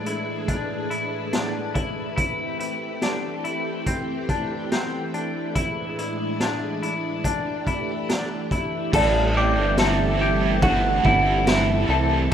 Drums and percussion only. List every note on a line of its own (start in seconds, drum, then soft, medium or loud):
0.06 closed hi-hat soft
0.48 kick medium
0.48 closed hi-hat medium
0.91 closed hi-hat soft
1.33 snare loud
1.33 closed hi-hat medium
1.75 kick medium
1.75 closed hi-hat soft
2.18 kick medium
2.18 closed hi-hat medium
2.60 closed hi-hat soft
3.02 snare medium
3.02 closed hi-hat medium
3.45 closed hi-hat soft
3.86 kick medium
3.86 closed hi-hat medium
4.29 kick medium
4.29 closed hi-hat soft
4.72 snare loud
4.72 closed hi-hat medium
5.14 closed hi-hat soft
5.55 kick medium
5.55 closed hi-hat medium
5.99 closed hi-hat soft
6.40 snare medium
6.40 closed hi-hat medium
6.83 closed hi-hat soft
7.24 kick medium
7.24 closed hi-hat medium
7.67 kick medium
7.67 closed hi-hat soft
8.09 snare loud
8.09 closed hi-hat medium
8.51 kick medium
8.51 closed hi-hat soft
8.93 kick loud
8.93 crash loud
9.77 snare loud
9.77 ride medium
9.77 tambourine medium
10.62 kick loud
10.62 ride medium
11.05 kick medium
11.47 snare loud
11.47 ride medium
11.47 tambourine medium